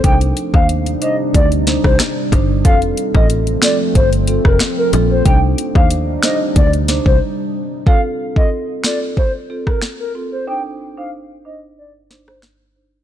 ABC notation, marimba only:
X:1
M:4/4
L:1/16
Q:1/4=92
K:Cdor
V:1 name="Marimba"
[DEc] z2 [DEc] z2 [DEc] z3 [DEc] z3 [DEc] z | [CFA] z2 [CFA] z2 [CFA] z3 [CFA] z3 [CFA] z | [DEc] z2 [DEc] z2 [DEc] z3 [DEc] z4 z | [CFA] z2 [CFA] z2 [CFA] z3 [CFA] z3 [CFA] z |
[DEc] z2 [DEc] z2 [DEc] z3 [DEc] z3 [DEc] z |]